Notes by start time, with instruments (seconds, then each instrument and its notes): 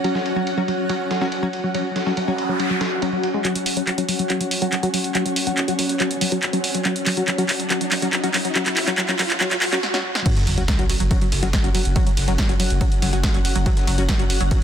Already playing: synth drone F#3 C#4, ambient pad C#4 F#4 F#5
0.04 synth arpeggio sound F#3, synth stab F#3 C#4 F#4, ride
0.15 synth arpeggio sound F#3, snare
0.26 ride
0.36 synth arpeggio sound F#3, synth stab F#3 C#4 F#4
0.47 ride
0.58 synth arpeggio sound F#3, synth stab F#3 C#4 F#4
0.68 synth arpeggio sound F#3, ride
0.89 synth arpeggio sound F#3, synth stab F#3 C#4 F#4, ride
1.11 synth arpeggio sound F#3, snare, ride
1.21 synth arpeggio sound F#3, synth stab F#3 C#4 F#4, snare
1.32 ride
1.43 synth arpeggio sound F#3, synth stab F#3 C#4 F#4
1.53 ride
1.64 synth arpeggio sound F#3
1.75 synth arpeggio sound F#3, synth stab F#3 C#4 F#4, ride, noise sweep
1.96 synth arpeggio sound F#3, snare, ride
2.06 synth stab F#3 C#4 F#4, snare
2.17 synth arpeggio sound F#3, ride
2.28 synth stab F#3 C#4 F#4, synth arpeggio sound F#3
2.38 ride
2.49 synth arpeggio sound F#3
2.60 synth stab F#3 C#4 F#4, ride
2.70 synth arpeggio sound F#3
2.81 synth arpeggio sound F#3, snare, ride
3.02 synth stab F#3 C#4 F#4, synth arpeggio sound F#3, ride
3.13 synth stab F#3 C#4 F#4
3.23 synth arpeggio sound F#3, ride
3.34 synth arpeggio sound G#3
3.45 synth drone F#3 C#4, synth stab F#3 C#4 F#4, clap, closed hi-hat, riser
3.55 synth arpeggio sound F#3, closed hi-hat
3.66 synth arpeggio sound F#3, open hi-hat
3.77 synth stab F#3 C#4 F#4, closed hi-hat
3.87 synth arpeggio sound F#3, clap, closed hi-hat
3.98 synth stab F#3 C#4 F#4, closed hi-hat
4.09 synth arpeggio sound F#3, open hi-hat
4.19 synth arpeggio sound F#3, closed hi-hat
4.30 synth stab F#3 C#4 F#4, clap, closed hi-hat
4.40 synth arpeggio sound F#3, closed hi-hat
4.51 open hi-hat
4.62 synth arpeggio sound F#3, synth stab F#3 C#4 F#4, closed hi-hat
4.72 synth arpeggio sound F#3, clap, closed hi-hat
4.83 synth stab F#3 C#4 F#4, closed hi-hat
4.94 synth arpeggio sound F#3, open hi-hat
5.04 closed hi-hat
5.15 synth arpeggio sound F#3, synth stab F#3 C#4 F#4, clap, closed hi-hat
5.26 synth arpeggio sound F#3, closed hi-hat
5.36 open hi-hat
5.47 synth arpeggio sound F#3, synth stab F#3 C#4 F#4, closed hi-hat
5.57 clap, closed hi-hat
5.68 synth arpeggio sound F#3, synth stab F#3 C#4 F#4, closed hi-hat
5.79 synth arpeggio sound F#3, open hi-hat
5.89 closed hi-hat
6.00 synth stab F#3 C#4 F#4, synth arpeggio sound F#3, clap, closed hi-hat
6.11 closed hi-hat
6.21 synth arpeggio sound F#3, open hi-hat
6.32 synth stab F#3 C#4 F#4, synth arpeggio sound F#3, closed hi-hat
6.43 clap, closed hi-hat
6.53 synth stab F#3 C#4 F#4, synth arpeggio sound F#3, closed hi-hat
6.64 open hi-hat
6.75 synth arpeggio sound F#3, closed hi-hat
6.85 synth stab F#3 C#4 F#4, synth arpeggio sound F#3, clap, closed hi-hat
6.96 closed hi-hat
7.06 synth arpeggio sound F#3, clap, open hi-hat
7.17 synth stab F#3 C#4 F#4, closed hi-hat
7.28 synth arpeggio sound F#3, clap, closed hi-hat
7.38 synth stab F#3 C#4 F#4, synth arpeggio sound F#3, closed hi-hat
7.49 clap, open hi-hat
7.60 synth arpeggio sound F#3, closed hi-hat
7.70 synth stab F#3 C#4 F#4, clap, closed hi-hat
7.81 synth arpeggio sound F#3, closed hi-hat
7.92 synth arpeggio sound F#3, clap, open hi-hat
8.02 synth stab F#3 C#4 F#4, closed hi-hat
8.13 synth arpeggio sound F#3, clap, closed hi-hat
8.23 synth stab F#3 C#4 F#4, closed hi-hat
8.34 synth arpeggio sound F#3, clap, open hi-hat
8.45 synth arpeggio sound F#3, closed hi-hat
8.55 synth stab F#3 C#4 F#4, clap, closed hi-hat
8.66 synth arpeggio sound F#3, clap, closed hi-hat
8.77 clap, open hi-hat
8.87 synth stab F#3 C#4 F#4, synth arpeggio sound F#3, clap, closed hi-hat
8.98 synth arpeggio sound F#3, clap, closed hi-hat
9.09 synth stab F#3 C#4 F#4, clap, closed hi-hat
9.19 synth arpeggio sound F#3, clap, open hi-hat
9.30 clap, closed hi-hat
9.40 synth stab F#3 C#4 F#4, synth arpeggio sound F#3, clap, closed hi-hat
9.51 synth arpeggio sound F#3, clap, closed hi-hat
9.62 clap, open hi-hat
9.72 synth arpeggio sound F#3, synth stab F#3 C#4 F#4, clap, closed hi-hat
9.83 snare
9.94 synth stab F#3 C#4 F#4, snare
10.15 snare
10.26 synth drone F#3 C#4, synth stab F#3 C#4 F#4, ambient pad C#4, kick, closed hi-hat, ride, crash, sub drop
10.31 ambient pad F#4
10.36 synth arpeggio sound F#3, snare, closed hi-hat, ride
10.47 sub bass F#1, synth arpeggio sound F#3, open hi-hat, ride
10.58 sub bass F#1, synth stab F#3 C#4 F#4, closed hi-hat, ride
10.68 synth arpeggio sound F#3, kick, snare, closed hi-hat, ride
10.79 sub bass F#1, synth stab F#3 C#4 F#4, ambient pad F#5, closed hi-hat, ride
10.89 synth arpeggio sound F#3, open hi-hat, ride
11.00 sub bass F#1, synth arpeggio sound F#3, closed hi-hat, ride
11.11 synth stab F#3 C#4 F#4, kick, closed hi-hat, ride
11.21 synth arpeggio sound F#3, closed hi-hat, ride
11.32 sub bass F#1, snare, open hi-hat, ride
11.43 sub bass F#1, synth stab F#3 C#4 F#4, synth arpeggio sound F#3, snare, closed hi-hat, ride
11.53 synth arpeggio sound F#3, kick, snare, closed hi-hat, ride
11.64 sub bass F#1, synth stab F#3 C#4 F#4, closed hi-hat, ride
11.75 synth arpeggio sound F#3, open hi-hat, ride
11.85 sub bass F#1, closed hi-hat, ride
11.96 synth stab F#3 C#4 F#4, synth arpeggio sound F#3, kick, closed hi-hat, ride
12.07 synth arpeggio sound F#3, closed hi-hat, ride
12.17 sub bass F#1, snare, open hi-hat, ride
12.28 sub bass F#1, synth stab F#3 C#4 F#4, synth arpeggio sound F#3, snare, closed hi-hat, ride
12.38 kick, snare, closed hi-hat, ride
12.49 sub bass F#1, synth stab F#3 C#4 F#4, synth arpeggio sound F#3, closed hi-hat, ride
12.60 synth arpeggio sound F#3, open hi-hat, ride
12.70 sub bass F#1, closed hi-hat, ride
12.81 synth stab F#3 C#4 F#4, synth arpeggio sound F#3, kick, closed hi-hat, ride
12.92 closed hi-hat, ride
13.02 sub bass F#1, synth arpeggio sound F#3, snare, open hi-hat, ride
13.13 sub bass F#1, synth stab F#3 C#4 F#4, synth arpeggio sound F#3, closed hi-hat, ride
13.23 kick, snare, closed hi-hat, ride
13.34 sub bass F#1, synth arpeggio sound F#3, synth stab F#3 C#4 F#4, closed hi-hat, ride
13.45 open hi-hat, ride
13.55 sub bass F#1, synth arpeggio sound F#3, closed hi-hat, ride
13.66 synth arpeggio sound F#3, synth stab F#3 C#4 F#4, kick, closed hi-hat, ride
13.77 snare, closed hi-hat, ride
13.87 sub bass F#1, synth arpeggio sound F#3, open hi-hat, ride
13.98 sub bass F#1, synth stab F#3 C#4 F#4, closed hi-hat, ride
14.09 synth arpeggio sound F#3, kick, snare, closed hi-hat, ride
14.19 sub bass F#1, synth stab F#3 C#4 F#4, synth arpeggio sound F#3, closed hi-hat, ride
14.30 open hi-hat, ride
14.40 sub bass F#1, synth arpeggio sound F#3, closed hi-hat, ride
14.51 synth stab F#3 C#4 F#4, kick, closed hi-hat, ride